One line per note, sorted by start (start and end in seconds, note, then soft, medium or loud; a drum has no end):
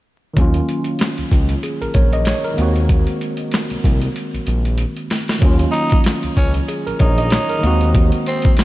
0.33 0.61 D#2 loud
0.33 2.52 D#3 medium
0.33 2.53 F#3 medium
0.33 2.54 A#3 medium
0.33 kick loud
0.33 closed hi-hat medium
0.39 2.55 C#4 medium
0.39 2.56 F4 medium
0.54 closed hi-hat medium
0.69 closed hi-hat medium
0.84 closed hi-hat medium
0.99 snare loud
0.99 snare medium
0.99 closed hi-hat medium
1.18 1.24 C#2 soft
1.18 closed hi-hat medium
1.32 1.55 C#2 medium
1.32 kick medium
1.32 closed hi-hat medium
1.49 closed hi-hat medium
1.63 1.81 G#4 medium
1.63 closed hi-hat medium
1.82 1.87 A#1 soft
1.82 1.94 A#4 medium
1.82 closed hi-hat soft
1.94 2.32 A#1 medium
1.94 2.12 C#5 medium
1.94 kick medium
1.94 closed hi-hat medium
2.13 2.26 D#5 medium
2.13 closed hi-hat medium
2.25 2.44 C#5 medium
2.25 snare loud
2.25 snare medium
2.25 closed hi-hat medium
2.44 2.74 A#4 medium
2.44 closed hi-hat soft
2.54 5.04 D#3 medium
2.54 5.05 G#3 medium
2.58 3.05 D#2 loud
2.58 5.06 A#3 medium
2.58 5.07 C4 medium
2.58 5.08 F#4 medium
2.58 closed hi-hat medium
2.76 closed hi-hat soft
2.89 kick loud
2.89 closed hi-hat medium
3.07 closed hi-hat medium
3.21 closed hi-hat medium
3.37 closed hi-hat medium
3.52 snare loud
3.52 snare medium
3.52 closed hi-hat medium
3.70 3.76 C2 soft
3.70 closed hi-hat medium
3.84 4.08 C2 medium
3.84 kick medium
3.84 closed hi-hat medium
4.02 closed hi-hat medium
4.16 closed hi-hat medium
4.34 4.39 A#1 soft
4.34 closed hi-hat soft
4.47 4.85 A#1 medium
4.47 closed hi-hat medium
4.65 closed hi-hat medium
4.78 closed hi-hat medium
4.97 closed hi-hat soft
5.10 snare medium
5.10 closed hi-hat medium
5.28 snare medium
5.28 closed hi-hat soft
5.38 5.66 D#2 loud
5.38 7.57 D#3 medium
5.38 7.58 F#3 medium
5.38 7.59 A#3 medium
5.38 kick loud
5.38 closed hi-hat medium
5.44 7.60 C#4 medium
5.44 7.61 F4 medium
5.59 closed hi-hat medium
5.72 6.01 D#4 medium
5.72 closed hi-hat medium
5.89 kick loud
5.89 closed hi-hat medium
6.04 snare loud
6.04 snare medium
6.04 closed hi-hat medium
6.23 6.29 C#2 medium
6.23 closed hi-hat medium
6.37 6.61 C#2 loud
6.37 6.53 C#4 medium
6.37 kick medium
6.37 closed hi-hat medium
6.54 closed hi-hat medium
6.68 6.86 G#4 medium
6.68 closed hi-hat medium
6.87 6.92 A#1 soft
6.87 6.99 A#4 medium
6.87 closed hi-hat soft
6.99 7.37 A#1 medium
6.99 7.91 D#4 medium
6.99 7.17 C#5 medium
6.99 kick medium
6.99 closed hi-hat medium
7.18 7.31 D#5 medium
7.18 closed hi-hat medium
7.30 7.49 C#5 medium
7.30 snare loud
7.30 snare medium
7.30 closed hi-hat loud
7.49 7.80 A#4 medium
7.49 closed hi-hat soft
7.59 8.64 D#3 medium
7.59 8.64 G#3 medium
7.59 8.64 A#3 medium
7.63 8.11 D#2 loud
7.63 8.64 C4 medium
7.63 8.64 F#4 medium
7.63 closed hi-hat medium
7.81 closed hi-hat soft
7.94 kick loud
7.94 closed hi-hat medium
8.12 closed hi-hat medium
8.26 8.55 C4 medium
8.26 closed hi-hat medium
8.42 kick loud
8.42 closed hi-hat medium
8.57 snare loud
8.57 snare medium
8.57 closed hi-hat medium